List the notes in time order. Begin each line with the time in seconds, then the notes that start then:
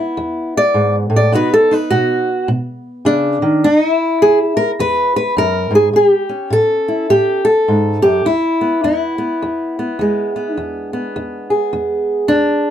Already playing: E2 B3 E4
0.17 E2
0.57 D5
0.74 G#2
1.10 A2
1.16 D5
1.32 B2 B3 D#4 F#4 B4
1.54 A4
1.71 D#4 B4
1.90 B2 F#4
2.48 B2
3.05 C#3 D4
3.42 D#3
3.64 E2 D#4
3.89 E4
4.22 E2 G#4
4.57 A#4
4.79 E2 B4
5.16 B4
5.37 F#2 A#4
5.71 G#2
5.75 G#4
5.93 A2 G4
6.29 C#4
6.50 A2 A4
6.88 E4
7.10 A2 G4
7.45 A4
7.68 G#2
8.02 F#2 G4
8.25 E2 E4
8.61 B3
8.84 E2 E4
9.18 B3
9.42 E2
9.79 B3
9.99 E2 G#3
10.36 B3
10.55 E2 D4
10.93 B3
11.16 E2
11.50 G#4
11.73 E2
12.28 E2 D4